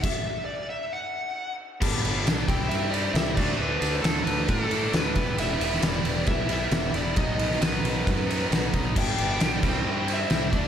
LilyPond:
<<
  \new Staff \with { instrumentName = "Lead electric guitar" } { \time 4/4 \key e \minor \tempo 4 = 134 e''4 d''8 e''8 fis''4. r8 | r4. g''8 e''8 d''8 e''8 d''8 | b'4 a'8 b'8 a'4 b'4 | e''4 d''4 e''8 e''4 d''8 |
dis''4 b'2~ b'8 r8 | g''2 g''8 e''4 d''8 | }
  \new Staff \with { instrumentName = "Overdriven electric guitar" } { \time 4/4 \key e \minor r1 | <g, d g b d'>8 <g b d'>8 <g, d g b d'>8 <c g c' e'>4 <g c' e'>8 <c g c' e'>8 <d fis a d'>8 | <d fis a d'>8 <fis a d'>8 <d fis a d'>4. <fis a d'>8 <d fis a d'>8 <e g b e'>8 | <e g b e'>8 <g b e'>8 <e g b e'>4. <g b e'>8 <e g b e'>8 <g b e'>8 |
<b, dis fis b dis'>8 <fis b dis'>8 <b, dis fis b dis'>4. <fis b dis'>8 <dis fis b dis'>8 <fis b dis'>8 | <g, d g b d'>8 <g b d'>8 <g, d g b d'>8 <c g c' e'>4 <g c' e'>8 <c g c' e'>8 <d fis a d'>8 | }
  \new Staff \with { instrumentName = "Fingered electric bass" } { \clef bass \time 4/4 \key e \minor r1 | g,,8 g,,8 b,,8 c,8 g,4 c,8 d,8 | d,8 d,8 d,8 d,8 a,4 d,8 e,,8 | e,,8 e,,8 e,,8 e,,8 b,,4 e,,8 e,,8 |
b,,8 b,,8 b,,8 b,,8 fis,4 b,,8 b,,8 | g,,8 g,,8 b,,8 c,8 g,4 c,8 d,8 | }
  \new DrumStaff \with { instrumentName = "Drums" } \drummode { \time 4/4 <cymc bd>4 r4 r4 r4 | <cymc bd>8 cymr8 <cymr sn>8 <bd cymr>8 cymr8 cymr8 <cymr sn>8 <cymc bd>8 | r8 cymr8 <cymr sn>8 cymr8 <bd cymr>8 cymr8 <cymr sn>8 <bd cymr>8 | cymr8 cymr16 sn16 <cymr sn>8 cymr8 <bd cymr>8 cymr8 <cymr sn>8 cymr8 |
<bd cymr>8 cymr16 sn16 <cymr sn>8 cymr8 <bd cymr>8 cymr8 <cymr sn>8 <bd cymr>8 | <cymc bd>8 cymr8 <cymr sn>8 <cymc bd>8 r8 cymr8 <cymr sn>8 <bd cymr>8 | }
>>